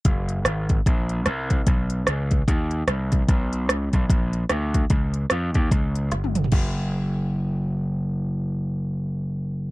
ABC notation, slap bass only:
X:1
M:4/4
L:1/8
Q:"Swing" 1/4=148
K:F#
V:1 name="Slap bass" clef=bass
F,,,2 G,,,2 A,,,2 ^B,,,2 | B,,,2 C,,2 _E,,2 =C,,2 | B,,,2 C,, B,,, A,,,2 =D,,2 | C,,2 E,, D,, C,,2 =G,,,2 |
F,,,8- | F,,,8 |]